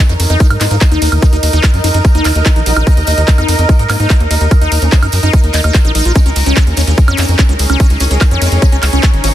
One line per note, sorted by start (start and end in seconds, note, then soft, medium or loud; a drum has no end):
0.00 0.10 C#4 medium
0.00 6.66 D#4 medium
0.00 9.34 D#4 medium
0.00 0.35 G#4 loud
0.00 9.34 A#4 medium
0.00 0.73 C#5 medium
0.05 0.16 F2 medium
0.05 0.14 D#4 medium
0.05 6.92 A#4 loud
0.05 closed hi-hat medium
0.10 tambourine soft
0.20 0.26 F2 loud
0.20 open hi-hat loud
0.20 ride medium
0.20 tambourine loud
0.30 0.36 F2 medium
0.30 0.40 D#4 loud
0.30 closed hi-hat medium
0.30 tambourine soft
0.40 kick loud
0.40 closed hi-hat medium
0.40 ride medium
0.40 tambourine medium
0.50 0.57 G#2 medium
0.50 closed hi-hat medium
0.50 high woodblock medium
0.61 0.67 G#2 loud
0.61 0.67 A#3 medium
0.61 0.65 D#4 loud
0.61 clap medium
0.61 open hi-hat loud
0.61 ride medium
0.61 tambourine loud
0.71 0.78 G#2 medium
0.71 0.78 A#3 medium
0.71 0.75 D#4 medium
0.71 closed hi-hat medium
0.71 tambourine soft
0.80 kick loud
0.80 clap loud
0.80 closed hi-hat medium
0.80 ride medium
0.80 tambourine medium
0.92 0.98 D#2 medium
0.92 1.01 D#4 loud
0.92 closed hi-hat medium
0.96 6.16 D#5 medium
1.02 1.08 D#2 loud
1.02 1.09 D#4 medium
1.02 open hi-hat loud
1.02 ride medium
1.02 tambourine loud
1.12 1.19 D#2 medium
1.12 closed hi-hat medium
1.12 tambourine soft
1.12 high woodblock soft
1.22 1.27 D#4 loud
1.22 kick loud
1.22 closed hi-hat medium
1.22 ride medium
1.22 tambourine medium
1.33 1.39 D#2 medium
1.33 1.37 D#4 medium
1.33 closed hi-hat medium
1.33 tambourine soft
1.43 1.50 D#2 loud
1.43 open hi-hat loud
1.43 ride medium
1.43 tambourine loud
1.53 1.60 D#2 loud
1.53 1.63 D#4 loud
1.53 closed hi-hat medium
1.53 tambourine soft
1.63 1.71 D#4 medium
1.63 kick loud
1.63 clap loud
1.63 closed hi-hat medium
1.63 ride medium
1.63 tambourine medium
1.63 high woodblock medium
1.73 1.80 F#2 medium
1.73 closed hi-hat medium
1.73 tambourine soft
1.84 1.91 F#2 loud
1.84 2.01 G#3 medium
1.84 1.88 D#4 loud
1.84 open hi-hat loud
1.84 ride medium
1.84 tambourine loud
1.94 2.01 F#2 medium
1.94 1.99 D#4 medium
1.94 closed hi-hat medium
1.94 tambourine soft
2.05 kick loud
2.05 closed hi-hat medium
2.05 ride medium
2.05 tambourine medium
2.15 2.21 D#2 medium
2.15 2.25 D#4 loud
2.15 closed hi-hat medium
2.24 2.32 D#2 loud
2.24 2.32 D#4 medium
2.24 clap medium
2.24 open hi-hat loud
2.24 ride medium
2.24 tambourine loud
2.24 high woodblock soft
2.35 2.42 D#2 medium
2.35 closed hi-hat medium
2.35 tambourine soft
2.45 2.50 D#4 loud
2.45 kick loud
2.45 clap loud
2.45 closed hi-hat medium
2.45 ride medium
2.45 tambourine medium
2.56 2.63 A#1 medium
2.56 2.60 D#4 medium
2.56 closed hi-hat medium
2.66 2.73 A#1 loud
2.66 2.73 F#3 medium
2.66 open hi-hat loud
2.66 ride medium
2.66 tambourine loud
2.76 2.83 A#1 medium
2.76 2.83 F#3 medium
2.76 2.86 D#4 loud
2.76 closed hi-hat medium
2.76 tambourine soft
2.76 high woodblock medium
2.87 2.94 D#4 medium
2.87 kick loud
2.87 closed hi-hat medium
2.87 ride medium
2.87 tambourine medium
2.97 3.04 D#2 medium
2.97 closed hi-hat medium
2.97 tambourine soft
3.07 3.14 D#2 loud
3.07 3.12 D#4 loud
3.07 open hi-hat loud
3.07 ride medium
3.07 tambourine loud
3.17 3.24 D#2 medium
3.17 3.22 D#4 medium
3.17 closed hi-hat medium
3.17 tambourine soft
3.28 kick loud
3.28 clap loud
3.28 closed hi-hat medium
3.28 ride medium
3.28 tambourine medium
3.38 3.45 F2 medium
3.38 3.48 D#4 loud
3.38 closed hi-hat medium
3.38 tambourine soft
3.38 high woodblock soft
3.48 3.55 F2 loud
3.48 3.56 D#4 medium
3.48 open hi-hat loud
3.48 ride medium
3.48 tambourine loud
3.59 3.65 F2 medium
3.59 closed hi-hat medium
3.59 tambourine soft
3.69 3.73 D#4 loud
3.69 kick loud
3.69 closed hi-hat medium
3.69 ride medium
3.69 tambourine medium
3.79 3.86 G#2 medium
3.79 3.84 D#4 medium
3.79 closed hi-hat medium
3.90 3.96 G#2 loud
3.90 3.96 A#3 medium
3.90 clap medium
3.90 open hi-hat loud
3.90 ride medium
3.90 tambourine loud
3.90 high woodblock medium
4.00 4.06 G#2 medium
4.00 4.06 A#3 medium
4.00 4.10 D#4 loud
4.00 closed hi-hat medium
4.00 tambourine soft
4.10 4.17 D#4 medium
4.10 kick loud
4.10 clap loud
4.10 closed hi-hat medium
4.10 ride medium
4.10 tambourine medium
4.20 4.27 D#2 medium
4.20 closed hi-hat medium
4.31 4.37 D#2 loud
4.31 4.35 D#4 loud
4.31 open hi-hat loud
4.31 ride medium
4.31 tambourine loud
4.40 4.47 D#2 loud
4.40 4.45 D#4 medium
4.40 closed hi-hat medium
4.40 tambourine soft
4.51 kick loud
4.51 closed hi-hat medium
4.51 ride medium
4.51 tambourine medium
4.51 high woodblock soft
4.61 4.68 D#2 medium
4.61 4.71 D#4 loud
4.61 closed hi-hat medium
4.61 tambourine soft
4.72 4.78 D#2 loud
4.72 4.79 D#4 medium
4.72 open hi-hat loud
4.72 ride medium
4.72 tambourine loud
4.82 4.89 D#2 medium
4.82 4.89 C#4 medium
4.82 closed hi-hat medium
4.82 tambourine soft
4.92 4.99 C#4 medium
4.92 4.97 D#4 loud
4.92 kick loud
4.92 clap loud
4.92 closed hi-hat medium
4.92 ride medium
4.92 tambourine medium
5.03 5.09 F#2 medium
5.03 5.07 D#4 medium
5.03 closed hi-hat medium
5.03 tambourine soft
5.03 high woodblock medium
5.12 5.19 F#2 loud
5.12 open hi-hat loud
5.12 ride medium
5.12 tambourine loud
5.23 5.30 F#2 medium
5.23 5.33 D#4 loud
5.23 closed hi-hat medium
5.23 tambourine soft
5.33 5.41 D#4 medium
5.33 kick loud
5.33 closed hi-hat medium
5.33 ride medium
5.33 tambourine medium
5.44 5.50 D#2 medium
5.44 closed hi-hat medium
5.53 5.60 D#2 loud
5.53 5.61 D#4 loud
5.53 clap medium
5.53 open hi-hat loud
5.53 ride medium
5.53 tambourine loud
5.64 5.71 D#2 medium
5.64 5.74 D#4 medium
5.64 closed hi-hat medium
5.64 tambourine soft
5.64 high woodblock soft
5.74 5.79 F4 medium
5.74 kick loud
5.74 clap loud
5.74 closed hi-hat medium
5.74 ride medium
5.74 tambourine medium
5.85 5.91 A#1 medium
5.85 5.92 D#4 loud
5.85 closed hi-hat medium
5.95 6.02 A#1 loud
5.95 6.05 D#4 medium
5.95 open hi-hat loud
5.95 ride medium
5.95 tambourine medium
6.05 6.12 A#1 medium
6.05 6.12 F4 medium
6.05 closed hi-hat medium
6.05 tambourine soft
6.15 9.34 C#4 medium
6.15 6.20 C#4 loud
6.15 kick loud
6.15 closed hi-hat medium
6.15 ride medium
6.15 tambourine medium
6.26 6.32 C#2 medium
6.26 6.30 C#4 medium
6.26 closed hi-hat medium
6.26 tambourine soft
6.36 6.43 C#2 loud
6.36 open hi-hat loud
6.36 ride medium
6.36 tambourine medium
6.46 6.53 C#2 medium
6.46 6.56 C#4 loud
6.46 9.34 G#4 medium
6.46 closed hi-hat medium
6.46 tambourine soft
6.56 6.64 C#4 medium
6.56 kick loud
6.56 clap loud
6.56 closed hi-hat medium
6.56 ride medium
6.56 tambourine medium
6.56 high woodblock soft
6.67 6.74 D#2 medium
6.67 closed hi-hat medium
6.67 tambourine soft
6.77 6.84 D#2 loud
6.77 6.81 C#4 loud
6.77 open hi-hat loud
6.77 ride medium
6.77 tambourine medium
6.87 6.94 D#2 medium
6.87 6.92 C#4 medium
6.87 closed hi-hat medium
6.87 tambourine soft
6.98 kick loud
6.98 closed hi-hat medium
6.98 ride medium
6.98 tambourine soft
7.08 7.15 F2 medium
7.08 7.18 C#4 loud
7.08 closed hi-hat medium
7.08 high woodblock medium
7.17 7.25 F2 loud
7.17 7.25 A#3 medium
7.17 7.25 C#4 medium
7.17 clap medium
7.17 open hi-hat loud
7.17 ride medium
7.17 tambourine medium
7.29 7.35 F2 medium
7.29 7.35 A#3 medium
7.29 closed hi-hat medium
7.29 tambourine soft
7.39 7.43 C#4 loud
7.39 kick loud
7.39 clap loud
7.39 closed hi-hat medium
7.39 ride medium
7.39 tambourine medium
7.49 7.56 C#2 medium
7.49 7.53 C#4 medium
7.49 closed hi-hat medium
7.59 7.66 C#2 loud
7.59 open hi-hat loud
7.59 ride medium
7.59 tambourine medium
7.63 9.34 C#5 medium
7.70 7.76 C#2 medium
7.70 7.79 C#4 loud
7.70 closed hi-hat medium
7.70 tambourine soft
7.70 high woodblock soft
7.80 7.87 C#4 medium
7.80 kick loud
7.80 closed hi-hat medium
7.80 ride medium
7.80 tambourine medium
7.90 7.97 C#2 medium
7.90 closed hi-hat medium
7.90 tambourine soft
8.00 8.07 C#2 loud
8.00 8.05 C#4 loud
8.00 open hi-hat loud
8.00 ride medium
8.00 tambourine medium
8.11 8.17 C#2 medium
8.11 8.15 C#4 medium
8.11 closed hi-hat medium
8.11 tambourine soft
8.21 kick loud
8.21 clap loud
8.21 closed hi-hat medium
8.21 ride medium
8.21 tambourine medium
8.21 high woodblock medium
8.31 8.38 F2 medium
8.31 8.41 C#4 loud
8.31 closed hi-hat medium
8.31 tambourine soft
8.42 8.48 F2 loud
8.42 8.58 G#3 loud
8.42 8.49 C#4 medium
8.42 open hi-hat loud
8.42 ride medium
8.42 tambourine loud
8.52 8.58 F2 medium
8.52 closed hi-hat medium
8.52 tambourine soft
8.62 8.66 C#4 loud
8.62 kick loud
8.62 closed hi-hat medium
8.62 ride medium
8.62 tambourine medium
8.72 8.79 C#2 medium
8.72 8.77 C#4 medium
8.72 closed hi-hat medium
8.83 8.89 C#2 loud
8.83 clap medium
8.83 open hi-hat loud
8.83 ride medium
8.83 tambourine loud
8.83 high woodblock soft
8.93 9.00 C#2 medium
8.93 9.03 C#4 loud
8.93 closed hi-hat medium
8.93 tambourine soft
9.03 9.10 C#4 medium
9.03 kick loud
9.03 clap loud
9.03 closed hi-hat medium
9.03 ride medium
9.03 tambourine soft
9.14 9.20 G#1 medium
9.14 closed hi-hat medium
9.24 9.30 G#1 loud
9.24 9.30 F3 medium
9.24 9.28 C#4 loud
9.24 open hi-hat loud
9.24 ride medium
9.24 tambourine medium